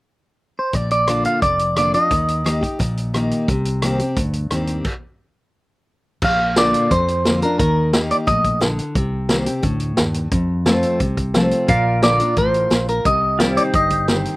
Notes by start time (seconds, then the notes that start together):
0.59 C5
0.73 A#1 A#2 D5, kick, closed hi-hat
0.91 D5, closed hi-hat
1.07 D3 A#3 D4 F4, cross-stick, closed hi-hat
1.25 F5, closed hi-hat
1.42 F1 F2 D5, kick, closed hi-hat
1.59 closed hi-hat
1.76 D3 A#3 D4 F4 D5, cross-stick, closed hi-hat
1.94 D4 F4 D#5, closed hi-hat
2.11 D#2 D#3, kick, closed hi-hat
2.28 closed hi-hat
2.44 D#3 A#3 D#4 G4, cross-stick, closed hi-hat
2.61 D#4 G4, kick, closed hi-hat
2.79 A#1 A#2, kick, closed hi-hat
2.97 closed hi-hat
3.14 D#3 A#3 D#4 G4, cross-stick, closed hi-hat
3.31 closed hi-hat
3.48 C2 C3, kick, closed hi-hat
3.65 closed hi-hat
3.82 D#3 A#3 C4 G4, cross-stick, closed hi-hat
3.99 C4 G4, closed hi-hat
4.16 D2 G2, kick, closed hi-hat
4.33 closed hi-hat
4.51 D#2 D#3 A#3 C4 G4, cross-stick, closed hi-hat
4.67 closed hi-hat
4.85 kick, crash
6.22 A#1 A#2 F5, kick, crash
6.56 D3 A#3 D4 F4 D5, snare, closed hi-hat
6.74 closed hi-hat
6.91 F2 C5, kick, closed hi-hat
7.08 closed hi-hat
7.25 D3 A#3 D4 F4, snare, closed hi-hat
7.42 D4 F4 A#4, closed hi-hat
7.59 D#2 D#3 A#4, kick, closed hi-hat
7.93 D#3 A#3 D#4 G4, snare, closed hi-hat
8.11 D5, closed hi-hat
8.27 A#1 A2 D#5, kick, closed hi-hat
8.44 kick, closed hi-hat
8.61 D3, snare, closed hi-hat
8.79 closed hi-hat
8.95 C2 C3, kick, closed hi-hat
9.29 D#3 A#3 C4 G4, snare, closed hi-hat
9.46 C4 G4, closed hi-hat
9.63 D2 A2, kick, closed hi-hat
9.80 closed hi-hat
9.97 D#2 G2, snare, closed hi-hat
10.14 closed hi-hat
10.31 F2, kick, closed hi-hat
10.66 F3 A3 C4 F4, snare, closed hi-hat
10.83 closed hi-hat
11.00 C2 C3, kick, closed hi-hat
11.17 kick, closed hi-hat
11.34 F3 A3 C4 F4, snare, closed hi-hat
11.51 closed hi-hat
11.68 A#1 A#2 F4 A#4 D5 F5, kick, closed hi-hat
12.02 D3 A#3 D4 F4 D5, snare, closed hi-hat
12.19 D4 F4, closed hi-hat
12.36 A1 A2 C5, kick, closed hi-hat
12.54 closed hi-hat
12.70 A#1 A#2, snare, closed hi-hat
12.88 A#4, closed hi-hat
13.05 C2 C3 D#5, kick, closed hi-hat
13.39 D#3 G3 C4 F4 G4 D5, snare, closed hi-hat
13.57 D5, closed hi-hat
13.64 D#4 C5
13.73 G1 G2 D#5, kick, closed hi-hat
13.90 kick, closed hi-hat
14.08 D#3 G3 C4 G4, snare, closed hi-hat
14.25 closed hi-hat